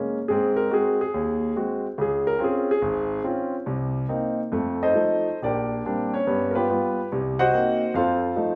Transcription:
Already playing: G#3 A#3 C#4
0.28 G#2 C4 G#4
0.56 A#4
0.71 G#3 C4 F#4 G#4
1.01 G#4
1.14 D#2
1.56 G#3 C4 F#4
1.98 C#2 G#4
2.27 A#4
2.39 C4 C#4 F4
2.44 G#4
2.71 G#4
2.82 G#1
3.24 C4 C#4 F4
3.66 C2 C3
4.09 A#3 C4 D#4
4.52 F2 A3
4.83 D#4 A4 C5 D#5
4.95 F3 A3 D#4
5.42 A#1 D4 G4 A#4 D5
5.85 G3 A#3 C4 D4
6.14 C#4 C#5
6.27 G2 B3
6.51 A#4
6.55 B3 F4 G4 B4
6.69 G3 B3 F4
7.12 C2 C3
7.39 F#4 C5 D#5 F#5
7.53 A#3 C4 D#4
7.94 F2 F4 A4 C5 F5
8.36 F3 A3 D#4

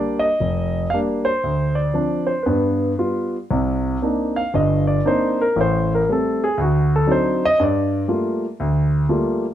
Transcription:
Already playing: G3 A#3 D4 D5
0.19 D#5
0.40 F1
0.90 G3 A#3 D4 F5
1.25 C5
1.44 D2
1.75 D5
1.94 F3 C4 D4
2.27 C5
2.43 G2 B3 B4
2.98 G3 B3 F4
3.51 C2 C3
4.02 A#3 C4 D4 D#4
4.36 F5
4.54 G1 G2 D#5
4.87 D5
5.05 A#3 C4 D4 D#4 C5
5.41 A#4
5.56 A1 A2
5.61 C5
5.95 A#4
6.08 G3 A3 C4 A4
6.44 G#4
6.58 D2 F#4
6.96 A4
7.06 F#3 C4 D4 D#4
7.12 C5
7.45 D#5
7.58 G2 C#5
7.63 D5
8.08 G3 A3 A#3 F4
8.60 D2
9.09 G3 A3 A#3 F4

